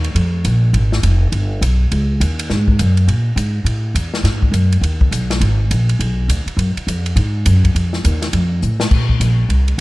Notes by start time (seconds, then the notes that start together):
Already playing: D#2
0.04 ride
0.15 F2, ride
0.45 A#1, hi-hat pedal, ride
0.73 G#1, ride
0.92 snare
1.03 F1, hi-hat pedal, ride
1.32 G1, ride
1.61 B1, hi-hat pedal, ride
1.92 C#2, ride
2.20 D#2, hi-hat pedal, ride
2.39 ride
2.50 G#2, snare
2.68 kick
2.79 F#2, hi-hat pedal, ride
2.97 ride
3.07 A#2, ride
3.36 G#2, hi-hat pedal, ride
3.64 A2, ride
3.94 E2, hi-hat pedal, ride
4.14 snare
4.24 G#2, snare, ride
4.42 kick
4.51 F#2, hi-hat pedal, ride
4.72 ride
4.81 D#2, ride
5.01 kick
5.11 B1, hi-hat pedal, ride
5.30 snare, ride
5.41 G#1, ride
5.71 A#1, hi-hat pedal, ride
5.89 ride
5.99 B1, ride
6.28 D2, hi-hat pedal, ride
6.46 muted upright bass stroke, ride
6.57 F#2, ride
6.76 muted upright bass stroke, ride
6.87 F2, hi-hat pedal, ride
7.06 ride
7.16 G#2, ride
7.46 F#2, hi-hat pedal, ride
7.64 kick, ride
7.75 F2, ride
7.93 snare
8.04 D#2, hi-hat pedal, ride
8.22 snare, ride
8.33 F2, ride
8.62 A2, hi-hat pedal
8.80 snare
8.91 A#2, kick, crash
9.09 kick
9.20 A#1, hi-hat pedal, ride
9.49 C2, ride
9.68 ride